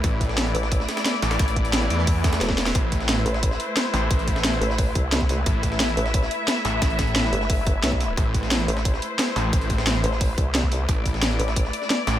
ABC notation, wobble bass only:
X:1
M:4/4
L:1/8
Q:1/4=177
K:Am
V:1 name="Wobble bass" clef=bass
z3 A,,,2 z3 | z6 E,,,2 | z3 A,,,2 z3 | z3 A,,,2 C,,3 |
z3 A,,,2 z3 | z3 G,,,3 B,,,2 | z3 A,,,2 z3 | z3 A,,,2 C,,3 |
z3 A,,,2 z3 |]